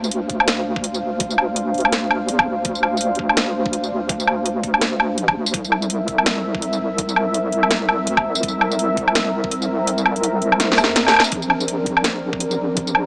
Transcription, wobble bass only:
Already playing: D2
0.30 D2
1.02 D2
1.75 D2
2.29 E2
2.47 D2
2.65 D2
3.19 D2
3.91 D2
4.64 D2
5.18 A1
5.36 D2
5.54 C2
6.08 C2
6.81 C2
7.53 C2
8.07 D2
8.25 C2
8.43 C2
8.97 C2
9.70 C2
10.42 C2
10.60 C2
10.78 E2
11.32 A#1
11.86 A#1
12.59 A#1

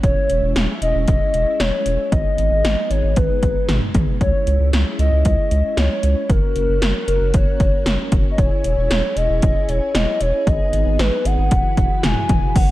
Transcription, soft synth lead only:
0.03 C#5
0.82 D#5
1.08 D#5
1.60 C#5
2.12 D#5
2.90 C#5
3.17 B4
4.21 C#5
4.99 D#5
5.25 D#5
5.77 C#5
6.30 A#4
7.08 A#4
7.34 C#5
8.31 D#5
8.38 C#5
9.16 D#5
9.43 D#5
9.69 C#5
9.95 D#5
10.21 C#5
10.47 D#5
10.99 B4
11.25 F#5
12.04 G#5
12.56 F#5

